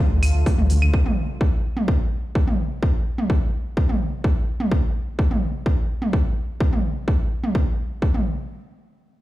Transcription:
0.00 0.90 D3 medium
0.00 0.90 F3 medium
0.00 0.90 A3 medium
0.00 0.90 F4 medium
0.11 0.19 D2 medium
0.23 0.31 D2 loud
0.23 open hi-hat loud
0.23 claves soft
0.35 0.43 D2 medium
0.46 kick loud
0.46 open hi-hat medium
0.58 0.67 D2 medium
0.58 mid tom medium
0.70 0.78 D2 medium
0.70 open hi-hat loud
0.82 0.90 D2 medium
0.82 claves medium
0.94 kick loud
1.06 mid tom medium
1.41 kick loud
1.77 mid tom medium
1.88 kick loud
2.35 kick loud
2.48 mid tom medium
2.83 kick loud
3.18 mid tom medium
3.30 kick loud
3.77 kick loud
3.89 mid tom medium
4.24 kick loud
4.60 mid tom medium
4.71 kick loud
5.19 kick loud
5.31 mid tom medium
5.66 kick loud
6.02 mid tom medium
6.13 kick loud
6.60 kick loud
6.73 mid tom medium
7.08 kick loud
7.44 mid tom medium
7.55 kick loud
8.02 kick loud
8.14 mid tom medium

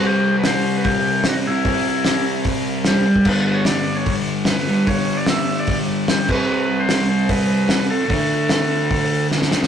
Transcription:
0.00 1.24 C3 medium
0.00 1.26 G3 loud
0.00 1.25 C4 loud
0.06 0.37 G4 loud
0.39 0.47 B4 loud
0.44 0.77 C5 loud
0.44 snare loud
0.44 open hi-hat medium
0.78 0.87 B4 medium
0.84 1.27 G4 loud
0.84 kick loud
0.84 open hi-hat medium
1.24 1.44 C3 medium
1.24 1.48 G3 medium
1.24 snare loud
1.24 open hi-hat medium
1.28 1.46 C4 medium
1.28 1.37 F#4 medium
1.46 2.84 C3 loud
1.46 2.87 G3 loud
1.46 2.88 C4 loud
1.46 1.88 E4 loud
1.65 kick loud
1.65 open hi-hat medium
1.89 2.25 E4 medium
2.05 snare loud
2.05 open hi-hat medium
2.44 kick loud
2.44 open hi-hat medium
2.85 3.05 C3 medium
2.85 3.28 G3 medium
2.85 3.29 G4 medium
2.85 snare loud
2.85 open hi-hat medium
2.89 3.07 C4 medium
3.16 kick medium
3.25 4.67 G2 medium
3.25 4.67 D3 loud
3.25 4.68 G3 loud
3.25 3.58 B4 loud
3.25 kick loud
3.25 crash loud
3.54 3.66 C#5 medium
3.65 3.97 D5 loud
3.65 snare loud
3.65 open hi-hat medium
3.96 4.15 C#5 medium
4.06 kick loud
4.06 open hi-hat medium
4.45 4.89 B4 loud
4.45 snare loud
4.45 open hi-hat medium
4.69 4.86 G2 medium
4.69 4.88 D3 medium
4.69 4.90 G3 medium
4.87 6.28 G2 medium
4.87 6.29 D3 medium
4.87 6.29 G3 loud
4.87 5.19 C#5 loud
4.87 kick loud
4.87 open hi-hat medium
5.17 5.28 D5 loud
5.26 5.60 E5 loud
5.26 snare loud
5.26 open hi-hat medium
5.60 5.78 D5 medium
5.67 kick loud
5.67 open hi-hat medium
6.08 6.30 G4 medium
6.08 snare loud
6.08 open hi-hat medium
6.29 7.68 C3 loud
6.29 7.70 G3 loud
6.29 7.71 C4 loud
6.29 6.82 B4 loud
6.29 kick loud
6.29 crash loud
6.80 7.08 C5 loud
6.89 snare loud
6.89 open hi-hat medium
7.09 7.30 C5 loud
7.29 7.87 B4 loud
7.29 kick loud
7.29 open hi-hat medium
7.69 7.89 C3 medium
7.69 7.89 G3 medium
7.69 7.91 C4 medium
7.69 snare loud
7.69 open hi-hat medium
7.90 9.28 A4 medium
8.09 9.50 D3 medium
8.09 9.51 A3 medium
8.09 9.50 D4 medium
8.09 kick loud
8.09 open hi-hat medium
8.49 snare loud
8.49 open hi-hat medium
8.91 kick loud
8.91 open hi-hat medium
9.31 snare medium
9.42 snare medium
9.51 9.67 D3 medium
9.51 9.67 A3 medium
9.51 9.67 D4 medium
9.51 snare loud
9.63 snare medium

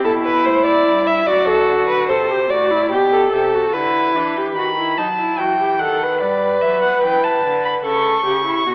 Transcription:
0.04 0.47 B2 medium
0.04 1.27 E4 medium
0.04 0.12 A4 medium
0.25 0.47 B4 medium
0.45 0.86 A2 medium
0.45 0.65 C5 medium
0.66 1.08 D5 medium
0.86 1.26 G2 medium
1.07 1.28 E5 medium
1.27 1.69 F#2 medium
1.27 2.11 F#4 medium
1.27 1.47 D5 medium
1.48 1.87 A4 medium
1.68 2.11 D3 medium
1.88 2.08 B4 medium
2.09 2.50 C3 medium
2.09 2.32 A4 medium
2.09 2.51 C5 medium
2.31 2.50 G4 medium
2.50 2.92 A2 medium
2.50 2.72 F#4 medium
2.50 2.90 D5 medium
2.71 2.91 E4 medium
2.91 3.31 B2 medium
2.91 3.31 G4 medium
2.91 3.00 G4 medium
3.12 3.35 A4 medium
3.32 3.72 C3 medium
3.32 3.55 G4 medium
3.32 3.74 A4 medium
3.54 3.76 F#4 medium
3.72 4.14 D3 medium
3.72 4.17 E4 medium
3.72 4.56 B4 medium
4.14 4.55 E3 medium
4.14 4.38 D4 medium
4.37 4.57 G4 medium
4.56 4.99 D#3 medium
4.56 4.66 F#4 medium
4.56 4.99 B5 medium
4.78 4.98 E4 medium
4.97 5.39 F#3 medium
4.97 5.06 D#4 medium
4.97 5.40 A5 medium
5.19 5.41 E4 medium
5.38 5.81 E3 medium
5.38 5.59 F#4 medium
5.38 5.81 G5 medium
5.60 5.80 G4 soft
5.79 6.22 D#3 medium
5.79 6.04 A4 medium
5.79 6.20 F#5 medium
6.02 7.84 B4 medium
6.20 6.61 G3 medium
6.20 6.63 D5 medium
6.62 7.02 F#3 medium
6.62 6.82 E5 medium
6.82 7.02 F#5 medium
7.03 7.43 E3 medium
7.03 7.25 G5 medium
7.24 7.64 A5 medium
7.43 7.83 D3 medium
7.65 7.73 B5 medium
7.84 8.24 C#3 medium
7.84 8.24 A4 medium
7.84 8.75 C#6 medium
8.25 8.65 C#3 medium
8.25 8.45 G4 medium
8.45 8.65 E4 medium
8.66 8.75 B2 medium
8.66 8.74 F#4 medium

